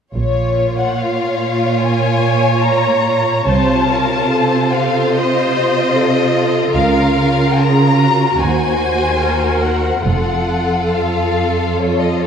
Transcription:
0.15 double bass section A#1, cello section A#2, violin section F4 C#5
0.80 violin section F#5
0.99 violin section F5
1.81 viola section C#5, violin section G#5
2.64 violin section A#5
3.47 double bass section C2, cello section C3, violin section F4 A5, viola section C5
3.89 viola section A#4
4.31 viola section A4, violin section C5
4.73 violin section F5
5.15 viola section C5, violin section D#5
5.95 viola section A4
6.35 viola section A4
6.73 double bass section C#2, cello section C#3, violin section A#4 F5, viola section A#4
7.17 viola section A#4
7.59 viola section G#4, violin section A#5
8.01 viola section F#4
8.40 double bass section D#2, cello section D#2, violin section F#4 C5 G#5
9.21 viola section A#4
9.63 violin section F#5
10.04 double bass section F1, cello section F2, violin section F4 A4 F#5, viola section A4
10.93 violin section F5
11.78 violin section C#5
12.00 violin section D#5
12.21 violin section C#5

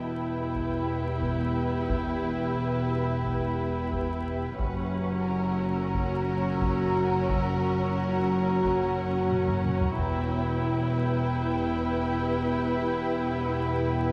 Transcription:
Already playing: double bass section E1, cello section E2, french horn section B3 G4, viola section E4, ambient pad G4 E5 B5, violin section B4 G5
0.54 taiko
1.22 taiko
1.89 taiko
3.24 taiko
3.92 taiko
4.59 double bass section F#1, cello section F#2, french horn section A#2 F#4, viola section C#4, ambient pad F#4 C#5 A#5, violin section F#5 A#5, taiko
5.26 violin section A#4 E6
5.94 taiko
6.62 taiko
7.29 taiko
8.64 taiko
9.31 taiko mid
9.48 taiko low-mid
9.65 taiko mid
9.81 taiko low
9.98 double bass section E1, cello section E2, french horn section B3 G4, viola section E4, ambient pad G4 B4 B5, violin section B4 G5, taiko

